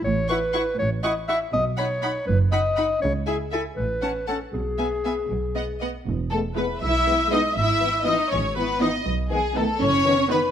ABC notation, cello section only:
X:1
M:6/8
L:1/8
Q:3/8=80
K:E
V:1 name="Cello section"
A,,3 A,,3 | B,,3 F,,3 | C,3 A,,3 | B,,3 B,,3 |
z A, B, E2 D | E2 D C B, D | z G, A, C2 B, |]